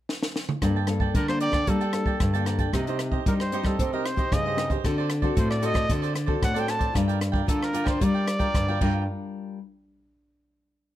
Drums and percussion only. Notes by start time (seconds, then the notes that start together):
0.09 snare
0.23 snare
0.36 snare
0.49 mid tom
0.62 kick, cross-stick, closed hi-hat
0.87 cross-stick, closed hi-hat
1.00 kick
1.15 kick, closed hi-hat
1.28 cross-stick
1.41 closed hi-hat
1.53 kick, cross-stick, closed hi-hat
1.67 kick, closed hi-hat
1.81 closed hi-hat
1.93 cross-stick, closed hi-hat
2.06 kick
2.20 kick, cross-stick, closed hi-hat
2.35 closed hi-hat
2.46 cross-stick, closed hi-hat
2.59 kick, closed hi-hat
2.73 kick, cross-stick, closed hi-hat
2.87 closed hi-hat
2.99 cross-stick, closed hi-hat
3.12 kick
3.26 kick, closed hi-hat
3.40 cross-stick
3.52 closed hi-hat
3.65 kick, cross-stick
3.79 kick, closed hi-hat
4.06 cross-stick, closed hi-hat
4.17 kick, closed hi-hat
4.32 kick, cross-stick, closed hi-hat
4.58 cross-stick, closed hi-hat
4.70 kick, closed hi-hat
4.84 kick, cross-stick, closed hi-hat
5.10 cross-stick, closed hi-hat
5.22 kick
5.37 kick, closed hi-hat
5.51 cross-stick
5.63 closed hi-hat
5.75 kick, cross-stick, closed hi-hat
5.90 kick, closed hi-hat
6.03 closed hi-hat
6.16 cross-stick, closed hi-hat
6.28 kick
6.42 kick, cross-stick, closed hi-hat
6.56 closed hi-hat
6.68 cross-stick, closed hi-hat
6.81 kick, closed hi-hat
6.95 kick, cross-stick, closed hi-hat
7.09 closed hi-hat
7.21 cross-stick, closed hi-hat
7.34 kick
7.48 kick, closed hi-hat
7.63 cross-stick
7.74 closed hi-hat
7.87 kick, cross-stick
8.01 kick, closed hi-hat
8.28 cross-stick, closed hi-hat
8.40 kick, closed hi-hat
8.55 kick, cross-stick, closed hi-hat
8.81 kick, crash